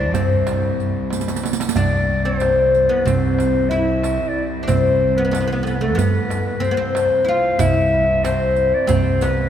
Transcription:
0.00 0.13 C2 loud
0.00 1.75 C2 medium
0.00 0.15 D4 medium
0.00 0.15 D5 medium
0.13 1.25 G2 medium
0.13 1.40 C4 medium
0.13 0.84 C5 medium
0.13 riq medium
0.13 darbuka dum medium
0.47 riq soft
0.47 darbuka tek medium
0.80 riq soft
1.10 1.41 C5 medium
1.10 riq medium
1.10 darbuka tek medium
1.21 riq medium
1.28 riq medium
1.28 darbuka ka medium
1.36 riq medium
1.44 riq medium
1.44 darbuka tek medium
1.53 riq medium
1.60 riq medium
1.60 darbuka ka medium
1.69 riq medium
1.76 7.60 C2 medium
1.76 2.88 C2 medium
1.76 2.27 D4 medium
1.76 2.21 D5 medium
1.76 riq medium
1.76 darbuka dum loud
2.24 2.89 C4 medium
2.24 2.92 C5 medium
2.40 riq soft
2.40 darbuka tek medium
2.74 riq soft
2.89 3.05 B3 medium
2.89 3.07 B4 medium
3.06 4.17 C2 medium
3.06 3.67 C4 medium
3.06 3.71 C5 medium
3.06 riq medium
3.06 darbuka dum medium
3.39 riq soft
3.39 darbuka tek medium
3.69 4.40 E4 medium
3.69 4.30 E5 medium
3.69 riq soft
3.69 darbuka ka soft
4.03 riq soft
4.03 darbuka tek medium
4.28 4.44 D5 medium
4.52 darbuka ka soft
4.63 4.69 D4 medium
4.67 5.98 C2 medium
4.67 5.17 C4 medium
4.67 5.18 C5 medium
4.67 riq medium
4.67 darbuka dum medium
5.16 5.23 B3 medium
5.16 5.46 B4 medium
5.25 5.30 B3 medium
5.31 5.39 B3 medium
5.31 riq medium
5.31 darbuka tek medium
5.41 5.46 B3 medium
5.45 5.51 B3 medium
5.45 5.55 C5 medium
5.53 5.61 B3 medium
5.53 5.65 B4 medium
5.63 5.66 B3 medium
5.63 5.75 A4 medium
5.63 riq soft
5.67 5.76 B3 medium
5.74 5.84 B4 medium
5.81 5.94 A3 medium
5.81 6.00 A4 medium
5.95 7.09 G2 medium
5.95 6.63 B3 medium
5.95 6.46 B4 medium
5.95 riq medium
5.95 darbuka dum medium
6.30 riq soft
6.30 darbuka tek medium
6.47 6.64 B4 medium
6.60 6.69 C4 medium
6.60 6.77 C5 medium
6.60 darbuka ka soft
6.64 riq soft
6.71 6.77 B3 medium
6.77 7.29 C4 medium
6.77 7.30 C5 medium
6.95 riq medium
6.95 darbuka tek medium
7.25 7.28 E4 medium
7.25 7.59 F4 medium
7.29 7.61 F5 medium
7.44 darbuka ka soft
7.59 8.72 C2 medium
7.59 9.49 C2 medium
7.59 8.26 E4 loud
7.59 8.26 E5 medium
7.59 riq medium
7.59 darbuka dum loud
8.24 8.86 C4 medium
8.24 8.76 C5 medium
8.24 riq medium
8.24 darbuka tek medium
8.56 riq soft
8.74 8.88 D5 medium
8.87 9.49 C2 medium
8.87 9.22 C4 medium
8.87 9.25 C5 medium
8.87 riq medium
8.87 darbuka dum medium
9.21 9.49 B3 medium
9.21 9.49 B4 medium
9.21 riq soft
9.21 darbuka tek medium

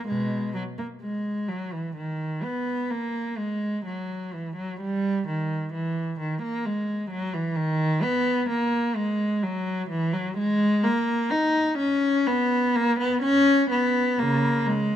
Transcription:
0.07 0.51 B2 soft
0.07 0.53 G#3 medium
0.55 0.62 F#3 medium
0.78 0.86 A#3 medium
1.02 1.48 G#3 medium
1.49 1.72 F#3 medium
1.73 1.96 E3 medium
1.96 2.43 D#3 medium
2.43 2.91 B3 medium
2.90 3.38 A#3 medium
3.37 3.85 G#3 medium
3.86 4.32 F#3 medium
4.33 4.56 E3 medium
4.56 4.79 F#3 medium
4.81 5.26 G3 medium
5.28 5.72 D#3 medium
5.73 6.18 E3 medium
6.20 6.41 D#3 medium
6.42 6.64 A#3 medium
6.65 7.10 G#3 medium
7.11 7.33 F#3 medium
7.34 7.56 E3 medium
7.56 8.02 D#3 medium
8.03 8.49 B3 medium
8.50 8.95 A#3 medium
8.96 9.42 G#3 medium
9.43 9.89 F#3 medium
9.90 10.13 E3 medium
10.13 10.36 F#3 medium
10.38 10.83 G#3 loud
10.83 11.30 A#3 medium
11.30 11.77 D#4 medium
11.78 12.25 C#4 medium
12.27 12.74 B3 medium
12.75 12.99 A#3 medium
13.00 13.22 B3 medium
13.22 13.69 C#4 loud
13.71 14.17 B3 medium
14.18 14.63 C#3 medium
14.18 14.66 A#3 medium
14.66 14.96 G#3 medium

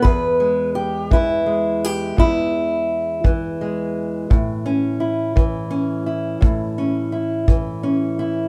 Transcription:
0.02 2.16 E2 medium
0.02 0.75 B4 medium
0.02 kick medium
0.40 1.45 G#3 soft
0.75 1.11 G4 medium
1.11 3.24 E3 medium
1.11 1.84 E4 medium
1.11 kick medium
1.46 3.59 G#3 soft
1.84 2.19 G4 medium
2.17 4.30 E2 medium
2.17 4.31 E4 loud
2.17 kick medium
3.24 5.35 E3 medium
3.24 kick medium
3.61 4.31 G#3 soft
4.30 6.40 A2 medium
4.30 kick medium
4.66 5.69 C#4 medium
5.00 6.06 E4 medium
5.36 7.47 E3 medium
5.36 kick medium
5.71 6.77 C#4 medium
6.06 7.12 E4 medium
6.41 8.48 A2 medium
6.41 kick medium
6.78 7.82 C#4 medium
7.12 8.19 E4 medium
7.48 8.48 E3 medium
7.48 kick medium
7.83 8.48 C#4 medium
8.19 8.48 E4 medium

